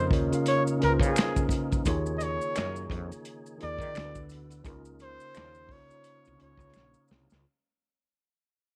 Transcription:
Already playing: fretless electric bass F2, tine electric piano C#3 C#4 F4 A#4 D#5, tonewheel organ C#3 A#3 D#4 F4
0.09 fretless electric bass D#2, tine electric piano C#3 C#4 F4 A#4, kick
0.13 tine electric piano C#5, closed hi-hat
0.30 tine electric piano C#3 C#4 F4 A#4, closed hi-hat, maracas
0.35 tine electric piano F5
0.46 flugelhorn C#5, closed hi-hat, maracas
0.67 maracas
0.79 tine electric piano C#3 C#4 F4 A#4, closed hi-hat
0.83 fretless electric bass C#2, flugelhorn A#4, tine electric piano B4
0.90 tine electric piano C5
1.00 fretless electric bass C#3, kick, closed hi-hat, maracas
1.05 flugelhorn G#4
1.16 finger snap, snare, clap, closed hi-hat, maracas
1.36 kick, maracas
1.49 kick, closed hi-hat, maracas
1.72 kick, closed hi-hat, maracas
1.84 fretless electric bass D#2, tonewheel organ C#3 D#3 G#4, tine electric piano D#3 D#4 F4 G#4, kick, closed hi-hat, maracas
1.88 tine electric piano C#5
2.06 maracas
2.18 flugelhorn D#5, closed hi-hat, maracas
2.23 flugelhorn C#5
2.41 maracas
2.55 fretless electric bass F#2, hollow-body jazz guitar C#4 G#4 A#4 D#5, finger snap, snare, clap, closed hi-hat, maracas
2.76 maracas
2.90 fretless electric bass F2, kick, closed hi-hat
3.12 closed hi-hat, maracas
3.25 closed hi-hat, maracas
3.46 maracas
3.58 tine electric piano D#3 D#4 F4 G#4, closed hi-hat
3.63 fretless electric bass D#2, tine electric piano A#4, flugelhorn D5
3.79 fretless electric bass D#3, kick, maracas
3.93 fretless electric bass D2, tine electric piano D3 D4 E4 F#4, tonewheel organ D3 B3 E4 F#4, finger snap, closed hi-hat, maracas
3.98 tine electric piano A4, snare, clap
4.04 tine electric piano B4
4.15 kick, maracas
4.29 closed hi-hat, maracas
4.50 closed hi-hat, maracas
4.63 fretless electric bass C#2, tine electric piano C#3 C#4 D#4 F4, tonewheel organ C#3 A#3 D#4 F4, kick, closed hi-hat, maracas
4.67 tine electric piano A#4
4.85 maracas
4.99 flugelhorn C5, closed hi-hat, maracas
5.20 maracas
5.35 fretless electric bass D#2, hollow-body jazz guitar C#4 F4 A#4 D#5, finger snap, snare, clap, closed hi-hat, maracas
5.55 maracas
5.67 fretless electric bass C#2, tine electric piano C#3 C#4 D#4 F4, kick, open hi-hat
5.72 tine electric piano C5, flugelhorn C#5
5.88 tine electric piano C#3 C#4 D#4 F4, closed hi-hat, maracas
5.93 tine electric piano C#5
6.04 closed hi-hat, maracas
6.25 fretless electric bass C2, maracas
6.37 tine electric piano C#3 C#4 D#4 F4, closed hi-hat
6.41 fretless electric bass C#2, tine electric piano C#5, flugelhorn C#5
6.57 fretless electric bass C#2, kick, maracas
6.74 fretless electric bass A#1, finger snap, snare, maracas
6.94 maracas
7.08 fretless electric bass C2, snare, maracas
7.30 fretless electric bass C#2, snare, maracas

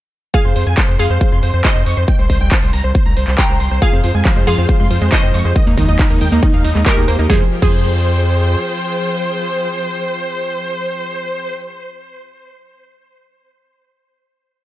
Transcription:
0.34 synth pluck G#4 F5, supersaw synth G#5, kick, closed hi-hat
0.45 analog synth bass F2, supersaw synth C5, closed hi-hat
0.56 analog synth bass F2, supersaw synth C5, open hi-hat
0.67 analog synth bass F2, supersaw synth G#5, closed hi-hat
0.77 supersaw synth C5, kick, clap, closed hi-hat
0.88 analog synth bass F2, supersaw synth C5, closed hi-hat
0.99 analog synth bass F2, synth pluck G#4 F5, supersaw synth C6, open hi-hat
1.10 analog synth bass F2, supersaw synth C5, closed hi-hat
1.21 supersaw synth C5, kick, closed hi-hat
1.32 analog synth bass F2, supersaw synth C6, closed hi-hat
1.43 analog synth bass F2, supersaw synth C5, open hi-hat
1.54 analog synth bass F2, supersaw synth C5, closed hi-hat
1.64 synth pluck C5 D#5, supersaw synth C#6, kick, clap, closed hi-hat
1.75 analog synth bass F2, supersaw synth C5, closed hi-hat
1.86 analog synth bass F2, supersaw synth C#6, open hi-hat
1.97 analog synth bass F2, supersaw synth C5, closed hi-hat
2.08 supersaw synth G5, kick, closed hi-hat
2.19 analog synth bass C2, supersaw synth C5, closed hi-hat
2.30 analog synth bass C2, supersaw synth C5, kick, open hi-hat
2.41 analog synth bass C2, supersaw synth G5, closed hi-hat
2.51 supersaw synth C5, kick, clap, closed hi-hat
2.62 analog synth bass C2, supersaw synth C5, open hi-hat
2.73 analog synth bass C2, supersaw synth A#5, open hi-hat
2.84 analog synth bass C2, supersaw synth C5, closed hi-hat
2.95 supersaw synth C5, kick, closed hi-hat
3.06 analog synth bass C2, supersaw synth A#5, closed hi-hat
3.17 analog synth bass C2, supersaw synth C5, open hi-hat
3.27 analog synth bass C2, supersaw synth C5, clap, closed hi-hat
3.38 synth pluck G5 A#5, supersaw synth C6, kick, clap, closed hi-hat
3.49 analog synth bass C2, supersaw synth C5, closed hi-hat
3.60 analog synth bass C2, supersaw synth C6, open hi-hat
3.71 analog synth bass C2, supersaw synth C5, closed hi-hat
3.82 synth arpeggio sound F3, string section G#3 F4, synth pluck G#4 F5, supersaw synth G#5, kick, closed hi-hat
3.93 analog synth bass F2, synth arpeggio sound C4, supersaw synth C5, closed hi-hat
4.04 analog synth bass F2, synth arpeggio sound F3, supersaw synth C5, open hi-hat
4.14 analog synth bass F2, synth arpeggio sound G#3, supersaw synth G#5, closed hi-hat
4.25 synth arpeggio sound F3, supersaw synth C5, kick, clap, closed hi-hat
4.36 analog synth bass F2, synth arpeggio sound G#3, supersaw synth C5, closed hi-hat
4.47 analog synth bass F2, synth arpeggio sound F3, synth pluck G#4 F5, supersaw synth C6, open hi-hat
4.58 analog synth bass F2, synth arpeggio sound C4, supersaw synth C5, closed hi-hat
4.69 synth arpeggio sound F3, supersaw synth C5, kick, closed hi-hat
4.80 analog synth bass F2, synth arpeggio sound G#3, supersaw synth C6, closed hi-hat
4.91 analog synth bass F2, synth arpeggio sound F3, supersaw synth C5, open hi-hat
5.01 analog synth bass F2, synth arpeggio sound G#3, supersaw synth C5, closed hi-hat
5.12 synth arpeggio sound F3, synth pluck C5 D#5, supersaw synth C#6, kick, clap, closed hi-hat
5.23 analog synth bass F2, synth arpeggio sound C4, supersaw synth C5, closed hi-hat
5.34 analog synth bass F2, synth arpeggio sound F3, supersaw synth C#6, open hi-hat
5.45 analog synth bass F2, synth arpeggio sound G#3, supersaw synth C5, closed hi-hat
5.56 synth arpeggio sound D#3, string section A#3 D#4, supersaw synth D#5, kick, closed hi-hat
5.67 analog synth bass D#2, synth arpeggio sound A#3, supersaw synth D#4, closed hi-hat
5.78 analog synth bass D#2, synth arpeggio sound D#3, supersaw synth D#4, kick, open hi-hat
5.88 analog synth bass D#2, synth arpeggio sound D#4, supersaw synth D#5, closed hi-hat
5.99 synth arpeggio sound D#3, supersaw synth D#4, kick, clap, closed hi-hat
6.10 analog synth bass D#2, synth arpeggio sound A#3, supersaw synth D#4, open hi-hat
6.21 analog synth bass D#2, synth arpeggio sound D#3, supersaw synth G5, open hi-hat
6.32 analog synth bass D#2, synth arpeggio sound A#3, supersaw synth D#4, closed hi-hat
6.43 synth arpeggio sound D#3, supersaw synth D#4, kick, closed hi-hat
6.53 analog synth bass D#2, synth arpeggio sound D#4, supersaw synth F5, closed hi-hat
6.64 analog synth bass D#2, synth arpeggio sound D#4, supersaw synth D#4, open hi-hat
6.75 analog synth bass D#2, synth arpeggio sound G#3, supersaw synth D#4, clap, closed hi-hat
6.86 synth pluck G4 A#4, synth arpeggio sound D#5, supersaw synth D#5, kick, clap, closed hi-hat
6.97 analog synth bass D#2, supersaw synth D#4, synth arpeggio sound G#4, closed hi-hat
7.08 analog synth bass D#2, synth arpeggio sound A#3, supersaw synth C5, open hi-hat
7.19 analog synth bass D#2, synth arpeggio sound A#3, supersaw synth D#4, closed hi-hat
7.30 analog synth bass F2, string section F3 F4 G#4 C5 G5, synth arpeggio sound F3, synth pluck G#4, supersaw synth C5, kick, snare
7.62 analog synth bass F2, synth arpeggio sound F3, synth pluck G#4, supersaw synth C5, kick, crash

